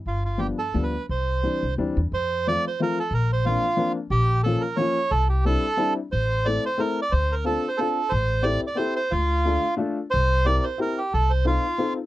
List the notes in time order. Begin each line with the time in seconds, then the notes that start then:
0.06 G1 F4
0.25 F4
0.37 F3 G3 B3 D4 G4
0.58 A4
0.74 D2 F3 G3 B3 D4
0.83 B4
1.09 C2 C5
1.43 E3 G3 C4 D4
1.63 C2
1.78 D2 E3 G3 C4 D4
1.97 E2
2.12 F2 C5
2.47 F3 A3 C4 F4 D5
2.67 C5
2.79 F3 A3 C4 F4 A#4
2.99 A4
3.11 A#1 A#4
3.33 C5
3.45 F3 A#3 C4 D4 F4
3.77 F3 A#3 C4 D4
4.10 A#1 G4
4.43 F3 A#3 C#4 F4 A4
4.61 A#4
4.77 F3 A#3 C#4 F4 C#5
5.11 C2 A4
5.29 G4
5.45 G3 C4 D4 E4 A4
5.77 G3 C4 D4 E4
6.12 A1 C5
6.45 A3 C4 E4 A4 D5
6.66 C5
6.78 A3 C4 E4 A4 A#4
7.02 D5
7.12 D2 C5
7.32 A#4
7.44 C4 D4 F4 A4
7.68 C5
7.77 C4 D4 F4 A4
8.10 A1 C5
8.42 C4 E4 G4 A4 D5
8.67 D5
8.75 C4 E4 G4 A4 C5
8.96 C5
9.11 D2 F4
9.45 A3 D4 F4 A4
9.77 A3 D4 F4 A4
10.11 C2 C5
10.45 C4 E4 G4 A#4 D5
10.63 C5
10.78 C4 E4 G4 A#4
10.98 G4
11.14 C2 A4
11.30 C5
11.45 C4 D#4 F4 A4
11.78 C4 D#4 F4 A4